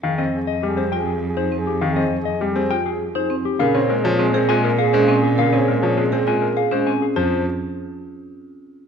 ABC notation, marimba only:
X:1
M:3/4
L:1/16
Q:1/4=101
K:Fm
V:1 name="Marimba"
z C z3 G F z2 E C z | z C z3 G F z2 E C z | B C z2 C A F z A D C z | B C z2 C A F z A D C z |
F2 z8 z2 |]